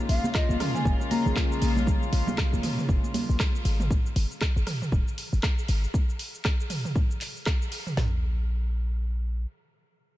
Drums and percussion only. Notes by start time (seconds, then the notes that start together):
0.09 open hi-hat, shaker
0.24 muted conga, high conga, shaker
0.35 kick, cross-stick, clap, shaker
0.49 high conga, shaker
0.60 cross-stick, mid tom, open hi-hat, muted conga, high conga, shaker
0.75 mid tom, shaker
0.85 kick, shaker
1.00 muted conga, shaker
1.11 open hi-hat, high conga, shaker
1.26 low conga, shaker
1.36 kick, cross-stick, clap, muted conga, shaker
1.52 shaker
1.62 open hi-hat, shaker
1.76 muted conga, high conga, low conga, shaker
1.87 kick, low conga, shaker
2.03 shaker
2.13 open hi-hat, shaker
2.27 muted conga, high conga, low conga, shaker
2.38 kick, cross-stick, clap, shaker
2.53 high conga, shaker
2.63 mid tom, open hi-hat, high conga, shaker
2.78 mid tom, shaker
2.89 kick, shaker
3.04 muted conga, shaker
3.14 open hi-hat, high conga, low conga, shaker
3.30 shaker
3.40 kick, cross-stick, clap, shaker
3.55 shaker
3.65 open hi-hat, shaker
3.80 mid tom, muted conga, shaker
3.91 kick, shaker
4.06 shaker
4.16 open hi-hat, shaker
4.32 shaker
4.41 kick, cross-stick, clap, shaker
4.57 shaker
4.67 cross-stick, mid tom, open hi-hat, shaker
4.82 mid tom, shaker
4.92 kick, shaker
5.08 shaker
5.18 open hi-hat, shaker
5.33 shaker
5.43 kick, cross-stick, clap, shaker
5.59 shaker
5.68 open hi-hat, shaker
5.84 shaker
5.94 kick, shaker
6.10 shaker
6.19 open hi-hat, shaker
6.35 shaker
6.45 kick, cross-stick, clap, shaker
6.60 shaker
6.70 mid tom, open hi-hat, shaker
6.85 mid tom, shaker
6.96 kick, shaker
7.11 shaker
7.21 clap, open hi-hat, shaker
7.37 shaker
7.46 kick, cross-stick, clap, shaker
7.62 shaker
7.72 open hi-hat, shaker
7.87 mid tom, shaker
7.97 snare, floor tom